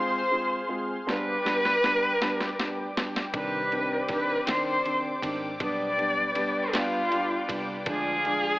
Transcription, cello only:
Already playing: C5
1.07 B4
3.35 B4
4.10 B4
4.49 C5
5.63 D5
6.75 F4
7.90 G#4

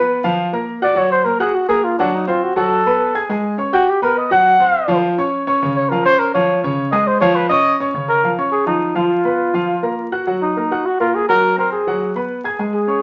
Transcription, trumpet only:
Already playing: B4
0.84 D5
0.98 C#5
1.12 C5
1.25 A#4
1.41 G#4
1.55 F#4
1.69 G#4
1.84 F4
1.98 D4
2.15 D#4
2.28 F4
2.43 F#4
2.56 A4
3.73 F#4
3.89 G4
4.03 A#4
4.18 D#5
4.32 F#5
5.76 C#5
5.89 A#4
6.06 C5
6.19 A#4
6.34 C#5
6.92 D#5
7.07 C5
7.21 C#5
7.36 B4
7.49 D#5
8.09 A#4
8.52 G#4
8.67 D#4
8.97 F4
10.42 D#4
10.86 F#4
11.00 F4
11.15 G#4
11.29 A#4
11.59 A#4
11.72 G#4
12.74 G#4

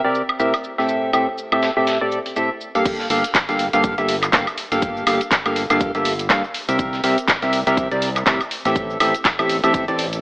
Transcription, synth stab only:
0.04 C3 C4 G4 A#4 D5
0.40 A2 C4 G4 A#4 E5
0.78 A2 C4 G4 A4 E5
1.13 A2 C4 G4 A4 E5
1.52 A2 C4 G4 A4 E5
1.77 A2 C4 G4 A4 E5
2.01 A2 C4 G4 A4 D5
2.36 A2 C4 G4 A4 E5
2.75 G2 A#3 G4 A4 F5
3.10 G2 A#3 G4 A4 F5
3.49 G2 A#3 G4 A4 F5
3.73 G2 A#3 G4 A4 F5
3.98 G2 A#3 G4 A4 E5
4.33 G2 A#3 G4 A4 F5
4.72 G2 A#3 G4 A4 F5
5.07 G2 A#3 G4 A4 F5
5.46 G2 A#3 G4 A4 F5
5.70 G2 A#3 G4 A4 F5
5.95 G2 A#3 G4 A4 E5
6.30 G2 A#3 G4 A4 F5
6.69 C3 C4 G4 A#4 E5
7.04 C3 C4 G4 A#4 E5
7.42 C3 C4 G4 A#4 E5
7.67 C3 C4 G4 A#4 E5
7.92 C3 C4 G4 A#4 D5
8.27 A2 C4 G4 A#4 E5
8.65 A2 C4 G4 A4 E5
9.00 A2 C4 G4 A4 E5
9.39 A2 C4 G4 A4 E5
9.64 A2 C4 G4 A4 E5
9.88 A2 C4 G4 A4 D5

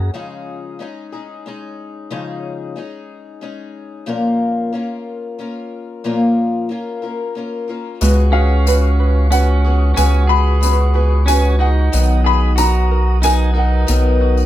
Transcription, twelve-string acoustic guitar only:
Already playing: A#3 C#4 F#4 G#4
0.14 C#3 F3 G#3 C#4 D#4 G#4
0.79 G#3 C#4 D#4 G#4
1.12 G#3 C#4 D#4 G#4
1.46 G#3 C#4 D#4 G#4
2.11 C#3 F3 G#3 C#4 D#4 G#4
2.76 G#3 C#4 D#4 G#4
3.41 G#3 C#4 D#4 G#4
4.06 A#2 F3 A#3 C#4 F4 A#4
4.73 A#3 C#4 F4 A#4
5.39 A#3 C#4 F4 A#4
6.04 A#2 F3 A#3 C#4 F4 A#4
6.69 A#3 C#4 F4 A#4
7.02 A#3 C#4 F4 A#4
7.35 A#3 C#4 F4 A#4
7.68 A#3 C#4 F4 A#4
8.01 C#3 G#3 B3 F#4 G#4
8.66 G#3 B3 F#4 G#4
9.32 G#3 B3 F#4 G#4
9.64 B3 F#4 G#4
9.96 C#3 G#3 B3 F#4 G#4
10.61 G#3 B3 F#4 G#4
10.94 B3 F#4 G#4
11.26 G#3 B3 F#4 G#4
11.60 B3 F#4 G#4
11.92 B2 D#3 F#3 B3 D#4
12.57 F#3 B3 D#4 A#4
13.22 F#3 B3 D#4 A#4
13.55 F#3 B3 D#4 A#4
13.87 B2 D#3 F#3 B3 D#4 A#4

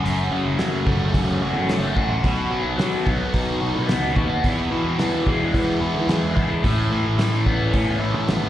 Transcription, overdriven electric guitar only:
0.04 F#2
0.31 C#3
0.58 F#3
0.86 A3
1.15 C#4
1.42 F#4
1.69 A3
1.96 F#4
2.23 B2
2.51 F#3
2.78 F#3
3.06 B3
3.34 D#4
3.60 F#4
3.88 B3
4.16 F#4
4.44 E2
4.71 B2
5.00 E3
5.27 G#3
5.54 B3
5.81 E4
6.08 G#3
6.36 E4
6.64 A2
6.92 E3
7.18 E3
7.46 B3
7.73 C#4
7.99 E4
8.27 B3

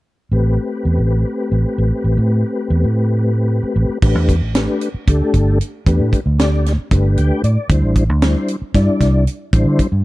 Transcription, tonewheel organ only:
0.32 A3 C4 G4 B4
4.02 A3 D4 G4 B4
4.56 A3 D4 G4 B4
5.08 A3 D4 G4 A4
5.87 A3 D4 G4 B4
6.39 A3 D4 G4 D5
6.92 A3 D4 G4 B4
7.18 G5
7.44 D5
7.70 G3 D4 E4 C5
8.22 G3 D4 E4 C5
8.74 G3 D4 E4 D5
9.54 G3 D4 E4 C5

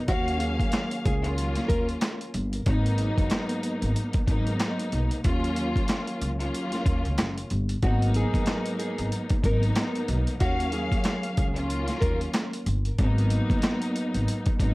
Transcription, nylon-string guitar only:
0.08 F#4
0.40 G#4
1.05 G#4
1.68 A#4
7.83 F#4
8.16 G#4
8.79 G#4
9.45 A#4
10.40 F#4
10.73 G#4
11.37 G#4
12.00 A#4

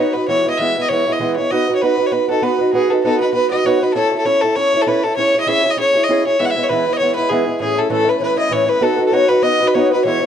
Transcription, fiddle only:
Already playing: C#5
0.14 B4
0.28 C#5
0.50 D#5
0.58 E5
0.80 D#5 E5
0.89 C#5
1.12 D#5
1.36 C#5
1.50 D#5
1.75 C#5
1.82 B4
2.06 C#5
2.12 B4
2.30 A4
2.43 B4
2.73 G#4
2.90 A4
3.04 A4
3.20 B4
3.33 B4
3.51 D#5
3.66 C#5
3.82 B4
3.94 A4
4.19 A4
4.26 C#5
4.41 A4
4.56 C#5
4.82 A4
4.87 B4
5.04 A4
5.16 C#5
5.40 D#5
5.48 E5
5.70 D#5
5.79 C#5
6.03 D#5
6.27 C#5
6.39 E5
6.45 F#5
6.50 E5
6.63 C#5
6.69 B4
6.93 D#5
6.98 C#5
7.15 B4
7.29 G#4
7.61 G#4
7.78 A4
7.92 A4
8.09 B4
8.22 B4
8.39 D#5
8.53 C#5
8.69 B4
8.83 A4
9.07 A4
9.13 C#5
9.28 B4
9.43 D#5
9.67 B4
9.74 C#5
9.93 B4
10.04 C#5

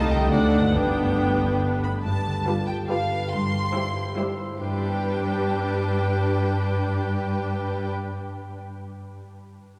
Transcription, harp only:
Already playing: C3 A3 D#4 G4 A4
0.13 D3
0.18 A3
0.22 D4
0.26 A4
0.56 G2
0.60 B3
0.65 D4
0.69 G4
2.05 G2
2.26 D3
2.47 F4
2.69 G4
2.90 F5
3.11 B4
3.32 G2
3.53 G3
3.75 E4
3.96 G4
4.17 E5
4.39 C5
4.60 G2
4.67 G3
4.74 B3
4.81 D4
4.88 G4
4.95 D5

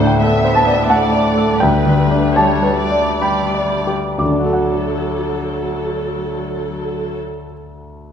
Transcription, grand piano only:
Already playing: D2 A2 F#5
0.00 D4
0.07 G5
0.23 A4
0.44 C5
0.55 A5
0.67 D5
0.89 F#5 A5
1.12 D5
1.38 A4
1.60 D2 G5
1.86 D3
2.11 D4
2.36 G4 A5
2.63 B4
2.91 D5
3.22 G5 B5
3.55 D5
3.87 G4
4.18 D2 D6
4.25 D3
4.32 D4
4.39 F#4
4.46 A4
4.53 F#5

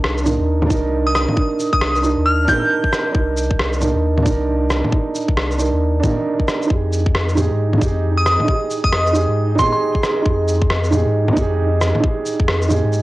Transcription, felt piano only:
Already playing: D4 D#4 A#4
0.23 D4 D#4 A#4
0.66 D4
0.70 D#4 A#4
1.33 D4 D#4
1.41 A#4
2.02 D4 D#4
2.06 A#4
2.44 D4 D#4
2.52 A#4
3.11 D4 D#4
3.19 A#4
3.80 D4 D#4
3.84 A#4
4.22 D4
4.26 D#4
4.30 A#4
4.89 D4 D#4
4.97 A#4
5.58 D4 D#4 A#4
6.00 D4
6.04 D#4 A#4
6.66 D#4
6.71 G4
6.75 G#4
7.35 D#4 G4 G#4
7.78 D#4
7.82 G4
7.86 G#4
8.44 D#4
8.48 G4
8.52 G#4
9.13 D#4 G4 G#4
9.55 D#4
9.59 G4
9.63 G#4
10.22 D#4 G4
10.30 G#4
10.90 D#4 G4 G#4
11.33 D#4
11.37 G4
11.41 G#4
12.00 D#4 G4
12.08 G#4
12.68 D#4 G4
12.72 G#4

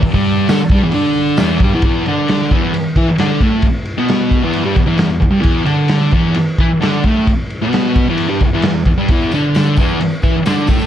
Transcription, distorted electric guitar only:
0.03 muted distorted electric guitar stroke
0.14 G2 G3
0.48 D3 D4
0.71 G2 G3
0.83 E2 E3
0.93 D3 D4
1.38 E2 E3
1.62 G2 G3
1.74 E2 E3
1.84 E2 E3
2.06 D3 D4
2.52 E2 E3
2.74 muted distorted electric guitar stroke
2.96 E3 E4
3.08 muted distorted electric guitar stroke
3.19 D3 D4
3.42 A2 A3
3.64 muted distorted electric guitar stroke
3.98 B2 B3
4.42 E2 E3
4.65 G2 G3
4.76 E2
4.86 E2 E3
4.98 E2
5.20 E2
5.31 G2 G3
5.41 E2 E3
5.64 D3 D4
6.12 E2 E3
6.36 muted distorted electric guitar stroke
6.60 E3 E4
6.70 muted distorted electric guitar stroke
6.81 D3 D4
7.05 A2 A3
7.28 muted distorted electric guitar stroke
7.62 B2 B3
8.08 E2 E3
8.28 G2 G3
8.43 E2
8.53 E2 E3
8.65 E2
8.87 E2
8.98 G2 G3
9.10 E2 E3
9.33 D3 D4
9.77 E2 E3
10.01 muted distorted electric guitar stroke
10.23 E3 E4
10.36 muted distorted electric guitar stroke
10.46 D3 D4
10.68 A2 A3

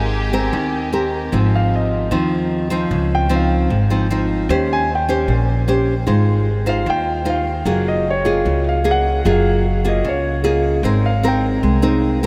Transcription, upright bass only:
Already playing: G#1
0.53 D#2
1.33 G#1
2.12 D#2
2.91 C#2
3.70 G#1
4.49 D#2
5.28 A#1
6.07 G#1
6.86 D#2
7.66 F#1
8.45 C#2
9.25 F#1
10.04 C#2
10.83 G#1
11.63 C2

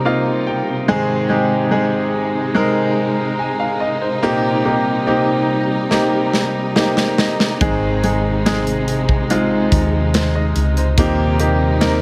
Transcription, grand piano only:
Already playing: A#3 C4 D#4 G4 A#4
0.05 A#3 C4 D#4 F4 F5
0.47 G5
0.88 G#2 D#3 G#3 C4 D#4 G#4
1.29 G#3 C4 D#4 G4
1.71 G#3 C4 D#4 G#4
2.55 G#3 C4 D#4 A#4
3.39 G#5
3.59 F5
3.80 D#5
4.01 C5
4.22 A#2 A#3 C4 D#4 G4
4.65 A#3 C4 D#4 G4
5.07 A#3 C4 D#4 G4
5.90 A#3 C4 D#4 G4
6.75 A#3 C4 D#4 G4 A#5
7.19 D#5
7.61 G#2 D#3 G#3 C4 D#4 G#4
8.03 G#3 C4 D#4 G#4
8.46 G#3 C4 D#4 G#4
9.30 G#3 C4 D#4 F4
10.14 C5
10.35 D#5
10.78 C5
10.98 A#2 A#3 C4 D#4 G4
11.39 A#3 C4 D#4 G4
11.80 A#3 C4 D#4 A#4

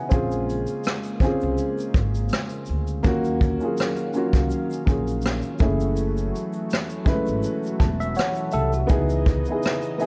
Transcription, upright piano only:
Already playing: B3 D#4 E4 F#4 A#4 D#5 E5 F#5 G#5
0.09 C4 C#4 F4 G#4
1.21 C4 C#4 F4 G#4
3.03 A#3 C#4 F4 F#4
3.60 A#3 C#4 F4 G#4
4.14 A#3 C#4 F4 F#4
4.85 A#3 C#4 F4 G#4
5.60 A3 C#4 E4 G#4
7.05 G#3 C#4 E4 B4
7.11 A3
7.80 A5
8.16 F#5
8.52 E5
8.87 B3 D#4 E4 G#4
9.48 B3 D#4 E4 G#4
9.98 B3 D#4 E4 G#4

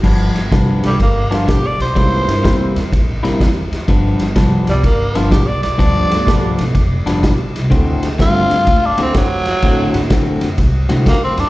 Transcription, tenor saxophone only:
0.86 G3
1.02 A#3
1.34 F4
1.49 G4
1.67 D5
1.82 C5
4.70 G3
4.85 A#3
5.17 F4
5.32 G4
5.47 D5
5.63 D5
8.21 F4
8.86 D4
9.02 C4
9.17 F#3
11.08 A#3
11.24 C4
11.40 D4

